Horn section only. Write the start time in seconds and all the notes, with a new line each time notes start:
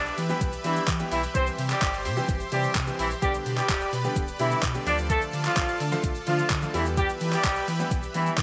Already playing: D4 D5
0.65 E3 E4
1.12 E3 E4
1.35 C4 C5
1.70 G3 G4
2.52 G3 G4
2.99 E3 E4
3.22 G3 G4
3.58 G3 G4
4.40 E3 E4
4.86 D4 D5
5.10 A3 A4
5.45 F3 F4
6.27 F3 F4
6.74 E3 E4
6.97 G3 G4
7.33 G3 G4
8.15 E3 E4